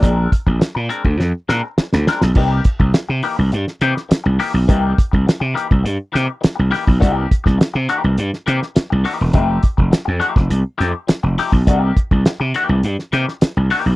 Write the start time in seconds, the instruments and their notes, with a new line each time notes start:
0.02 slap bass A#1, clean electric guitar G#3 C4 D4 A#4, kick, closed hi-hat
0.32 kick, closed hi-hat
0.47 slap bass A#1, muted clean electric guitar stroke, kick
0.60 muted clean electric guitar stroke, muted slap bass stroke, snare, closed hi-hat
0.75 slap bass A#2, muted clean electric guitar stroke
0.89 clean electric guitar G#3 C4 D4 A#4, closed hi-hat
1.04 slap bass D2, muted clean electric guitar stroke, kick
1.20 slap bass F2, muted clean electric guitar stroke, snare
1.49 slap bass A#2, clean electric guitar G#3 C4 D4 A#4, snare
1.64 muted clean electric guitar stroke
1.78 muted slap bass stroke, muted clean electric guitar stroke, snare
1.93 slap bass D2, muted clean electric guitar stroke, snare
2.07 clean electric guitar G#3 C4 D4 A#4, snare
2.22 slap bass B1, muted clean electric guitar stroke, snare
2.35 slap bass C2, clean electric guitar E3 A#3 D#4 G4, kick, crash
2.65 kick, closed hi-hat
2.79 slap bass C2, muted clean electric guitar stroke, kick
2.94 muted clean electric guitar stroke, snare, closed hi-hat
3.09 slap bass C3, muted clean electric guitar stroke
3.23 clean electric guitar E3 A#3 D#4 G4, open hi-hat
3.37 slap bass C2, muted clean electric guitar stroke
3.52 slap bass G2, muted clean electric guitar stroke, closed hi-hat
3.68 snare
3.81 slap bass C3, clean electric guitar E3 A#3 D#4 G4, closed hi-hat
3.95 muted clean electric guitar stroke, snare
4.09 muted clean electric guitar stroke, muted slap bass stroke, snare, closed hi-hat
4.24 slap bass C2, muted clean electric guitar stroke
4.39 clean electric guitar E3 A#3 D#4 G4, open hi-hat
4.54 slap bass B1, muted clean electric guitar stroke
4.68 slap bass C2, clean electric guitar E3 A#3 D#4 G4, kick, closed hi-hat
4.98 kick, closed hi-hat
5.12 slap bass C2, muted clean electric guitar stroke, kick
5.27 muted clean electric guitar stroke, muted slap bass stroke, snare, closed hi-hat
5.40 slap bass C3, muted clean electric guitar stroke
5.54 clean electric guitar E3 A#3 D#4 G4, closed hi-hat
5.69 slap bass C2, muted clean electric guitar stroke, kick
5.84 slap bass G2, muted clean electric guitar stroke, closed hi-hat
6.12 slap bass C3, clean electric guitar E3 A#3 D#4 G4, closed hi-hat
6.16 snare
6.27 muted clean electric guitar stroke
6.41 muted clean electric guitar stroke, muted slap bass stroke, snare, closed hi-hat
6.55 slap bass C2, muted clean electric guitar stroke
6.71 clean electric guitar E3 A#3 D#4 G4, snare, open hi-hat
6.86 slap bass B1, muted clean electric guitar stroke, kick
7.00 slap bass C2, clean electric guitar D#3 A3 D4 F#4, kick, closed hi-hat
7.12 clean electric guitar E3 A#3 D#4 G4
7.31 kick, closed hi-hat
7.44 slap bass C2, muted clean electric guitar stroke, kick, snare
7.58 muted clean electric guitar stroke, muted slap bass stroke, snare, closed hi-hat
7.74 slap bass C3, muted clean electric guitar stroke
7.89 clean electric guitar E3 A#3 D#4 G4, closed hi-hat
8.03 slap bass C2, muted clean electric guitar stroke
8.18 slap bass G2, muted clean electric guitar stroke, closed hi-hat
8.34 snare
8.46 slap bass C3, clean electric guitar E3 A#3 D#4 G4, closed hi-hat
8.61 muted clean electric guitar stroke, snare
8.75 muted clean electric guitar stroke, muted slap bass stroke, snare, closed hi-hat
8.90 slap bass C2, muted clean electric guitar stroke
9.04 clean electric guitar E3 A#3 D#4 G4, open hi-hat
9.19 slap bass E1, muted clean electric guitar stroke
9.33 slap bass F1, clean electric guitar F3 A3 D#4 G4, kick, closed hi-hat
9.63 kick, closed hi-hat
9.77 slap bass F1, muted clean electric guitar stroke, kick
9.91 muted clean electric guitar stroke, muted slap bass stroke, snare, closed hi-hat
10.05 slap bass F2, muted clean electric guitar stroke
10.20 clean electric guitar F3 A3 D#4 G4, closed hi-hat
10.35 slap bass F1, muted clean electric guitar stroke, kick, snare
10.49 slap bass C2, muted clean electric guitar stroke, closed hi-hat
10.78 slap bass F2, clean electric guitar F3 A3 D#4 G4, snare, closed hi-hat
10.93 muted clean electric guitar stroke
11.07 muted clean electric guitar stroke, muted slap bass stroke, snare, closed hi-hat
11.23 slap bass F1, muted clean electric guitar stroke
11.38 clean electric guitar F3 A3 D#4 G4, snare, open hi-hat
11.52 slap bass B1, muted clean electric guitar stroke, kick
11.67 slap bass C2, clean electric guitar D#3 A3 D4 F#4, kick, closed hi-hat
11.78 clean electric guitar E3 A#3 D#4 G4
11.97 kick, closed hi-hat
12.11 slap bass C2, muted clean electric guitar stroke, kick
12.26 muted slap bass stroke, muted clean electric guitar stroke, snare, closed hi-hat
12.40 slap bass C3, muted clean electric guitar stroke
12.54 clean electric guitar E3 A#3 D#4 G4, closed hi-hat
12.69 slap bass C2, muted clean electric guitar stroke
12.83 slap bass G2, muted clean electric guitar stroke, closed hi-hat
12.99 snare
13.12 slap bass C3, clean electric guitar E3 A#3 D#4 G4, closed hi-hat
13.27 muted clean electric guitar stroke, snare
13.41 muted clean electric guitar stroke, muted slap bass stroke, snare, closed hi-hat
13.57 slap bass C2, muted clean electric guitar stroke
13.70 clean electric guitar E3 A#3 D#4 G4, open hi-hat
13.86 slap bass B1, muted clean electric guitar stroke